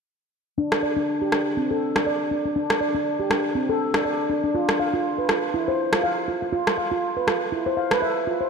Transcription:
0.58 handpan D4
0.72 cross-stick
0.83 handpan D5
0.97 handpan D4
1.22 handpan G4
1.32 handpan D4, cross-stick
1.57 handpan C4
1.71 handpan A4
1.96 handpan D4, cross-stick
2.06 handpan D5
2.31 handpan D4
2.45 handpan D4
2.56 handpan D4
2.70 cross-stick
2.81 handpan D5
2.95 handpan D4
3.20 handpan G4
3.30 handpan D4, cross-stick
3.55 handpan C4
3.69 handpan A4
3.94 handpan D4, cross-stick
4.05 handpan D5
4.30 handpan D4
4.44 handpan D4
4.55 handpan F4
4.69 cross-stick
4.80 handpan F5
4.94 handpan F4
5.18 handpan B4
5.29 handpan F4, cross-stick
5.54 handpan E4
5.68 handpan C5
5.93 handpan F4, cross-stick
6.03 handpan F5
6.28 handpan F4
6.42 handpan F4
6.53 handpan F4
6.67 cross-stick
6.78 handpan F5
6.92 handpan F4
7.17 handpan B4
7.27 handpan F4, cross-stick
7.52 handpan E4
7.66 handpan C5
7.77 handpan F5
7.91 handpan B4, cross-stick
8.02 handpan E5
8.27 handpan F4
8.41 handpan C5

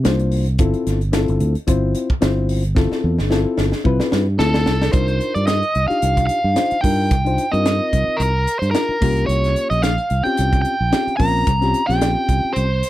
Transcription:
0.04 fingered electric bass C2, reed electric piano A#3 D4 F4 C5, snare, closed hi-hat
0.19 closed hi-hat
0.32 open hi-hat
0.46 closed hi-hat
0.59 fingered electric bass G1, reed electric piano C4 E4 F4 A4, kick, closed hi-hat
0.74 closed hi-hat
0.87 fingered electric bass G1, snare, closed hi-hat
1.01 closed hi-hat
1.12 reed electric piano C4 E4 F4 A4, snare, closed hi-hat
1.28 fingered electric bass G1, closed hi-hat
1.40 fingered electric bass D2, closed hi-hat
1.55 muted fingered electric bass stroke, closed hi-hat
1.67 fingered electric bass G1, reed electric piano C4 E4 F4 C5, kick, closed hi-hat
1.95 closed hi-hat
2.10 kick
2.21 fingered electric bass G1, reed electric piano C4 E4 F4 C5, snare, closed hi-hat
2.49 open hi-hat
2.64 closed hi-hat
2.75 reed electric piano C4 E4 F4 A4, kick, snare
2.92 snare
3.04 fingered electric bass E2
3.19 fingered electric bass G1, snare
3.30 reed electric piano C4 E4 F4 A4, snare
3.58 fingered electric bass G1, snare
3.72 snare
3.84 fingered electric bass C2, reed electric piano C4 E4 F4 B4, kick
4.00 snare
4.12 fingered electric bass G2, snare
4.38 fingered electric bass D2, reed electric piano C4 E4 F4 A4, lead electric guitar A4, snare
4.54 snare
4.66 fingered electric bass C2, snare
4.82 snare
4.92 fingered electric bass C2, reed electric piano D4 D#4 F4 A#4, lead electric guitar C5, kick, closed hi-hat
5.08 closed hi-hat
5.21 closed hi-hat
5.34 fingered electric bass G2, lead electric guitar D5, closed hi-hat
5.47 lead electric guitar D#5, snare, closed hi-hat
5.63 closed hi-hat
5.75 fingered electric bass C2, closed hi-hat
5.88 reed electric piano D4 D#4 F4 G4, lead electric guitar F5, muted fingered electric bass stroke, closed hi-hat
6.02 fingered electric bass C2, closed hi-hat
6.17 kick, closed hi-hat
6.27 lead electric guitar F5, closed hi-hat
6.44 fingered electric bass G2
6.54 reed electric piano D4 D#4 F4 C5, snare, closed hi-hat
6.71 muted fingered electric bass stroke, closed hi-hat
6.81 fingered electric bass G2, reed electric piano D4 D#4 F4 A#4, lead electric guitar G5, kick, open hi-hat
7.11 fingered electric bass C2, kick, closed hi-hat
7.25 reed electric piano D4 D#4 F4 C5, closed hi-hat
7.38 closed hi-hat
7.52 fingered electric bass G2, reed electric piano C4 D#4 F4 A#4, lead electric guitar D#5, closed hi-hat
7.65 snare, closed hi-hat
7.93 fingered electric bass C2, kick, closed hi-hat
8.17 fingered electric bass C2, lead electric guitar A#4, closed hi-hat
8.47 closed hi-hat
8.59 fingered electric bass G2, lead electric guitar C5, closed hi-hat
8.71 reed electric piano D4 D#4 F4, lead electric guitar A#4, snare, closed hi-hat
8.75 reed electric piano A#4
8.89 muted fingered electric bass stroke
9.01 fingered electric bass C2, reed electric piano A#3 C#4 F4 G4, kick, open hi-hat
9.17 closed hi-hat
9.26 fingered electric bass C2, lead electric guitar C#5, closed hi-hat
9.44 snare, closed hi-hat
9.56 closed hi-hat
9.70 fingered electric bass A#1, lead electric guitar D#5, closed hi-hat
9.82 lead electric guitar F5, snare, closed hi-hat
9.98 closed hi-hat
10.10 fingered electric bass C2, closed hi-hat
10.24 reed electric piano C4 C#4 F4 G4, lead electric guitar G5, closed hi-hat
10.37 fingered electric bass C2, closed hi-hat
10.53 kick, closed hi-hat
10.62 lead electric guitar G5, closed hi-hat
10.81 fingered electric bass A#1
10.92 reed electric piano C4 C#4 F4 G4, snare, closed hi-hat
11.07 muted fingered electric bass stroke, closed hi-hat
11.17 fingered electric bass A#1, reed electric piano C4 C#4 F4 A#4, lead electric guitar A#5, kick, open hi-hat
11.47 fingered electric bass C2, kick, closed hi-hat
11.61 reed electric piano C4 C#4 F4 G4, snare, closed hi-hat
11.74 closed hi-hat
11.87 fingered electric bass A#1, reed electric piano C4 C#4 F4 G4, lead electric guitar G5, snare, closed hi-hat
12.01 snare, closed hi-hat
12.29 fingered electric bass C2, kick, closed hi-hat
12.53 fingered electric bass C2, lead electric guitar C5, closed hi-hat
12.83 closed hi-hat

